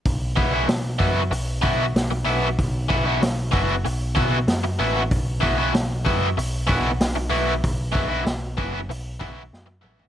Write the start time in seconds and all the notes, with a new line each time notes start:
0.05 B1, kick, open hi-hat
0.36 B1 E3 B3 E4 F#4, kick
0.53 E3 B3 E4 F#4
0.68 B1, muted overdriven electric guitar stroke, snare, open hi-hat
0.99 F#2 E3 B3 E4 F#4, kick
1.30 B1, muted overdriven electric guitar stroke, open hi-hat
1.62 B1 E3 B3 E4 F#4, kick
1.95 B1, snare, open hi-hat
2.11 muted overdriven electric guitar stroke
2.25 B1 E3 B3 E4 F#4
2.59 B1, kick, open hi-hat
2.89 B1 E3 B3 E4 F#4, kick
3.05 E3 B3 E4 F#4
3.22 B1, muted overdriven electric guitar stroke, snare, open hi-hat
3.52 F#1 E3 B3 E4 F#4, kick
3.85 B1, muted overdriven electric guitar stroke, open hi-hat
4.15 B1 E3 B3 E4 F#4, kick
4.48 F#2, snare, open hi-hat
4.64 muted overdriven electric guitar stroke
4.79 A1 E3 B3 E4 F#4
5.11 B1, kick, open hi-hat
5.41 B1 E3 B3 E4 F#4, kick
5.58 E3 B3 E4 F#4
5.74 B1, muted overdriven electric guitar stroke, snare, open hi-hat
6.05 F#2 E3 B3 E4 F#4, kick
6.37 B1, muted overdriven electric guitar stroke, open hi-hat
6.67 B1 E3 B3 E4 F#4, kick
7.00 B1, snare, open hi-hat
7.15 muted overdriven electric guitar stroke
7.30 B1 E3 B3 E4 F#4
7.64 B1, kick, open hi-hat
7.92 B1 E3 B3 E4 F#4, kick
8.09 E3 B3 E4 F#4
8.24 B1, muted overdriven electric guitar stroke, snare, open hi-hat
8.57 F#1 E3 B3 E4 F#4, kick
8.88 B1, muted overdriven electric guitar stroke, open hi-hat
9.20 B1 E3 B3 E4 F#4, kick
9.53 F#2, snare
9.66 muted overdriven electric guitar stroke
9.81 A1 E3 B3 E4 F#4, mid tom
9.99 floor tom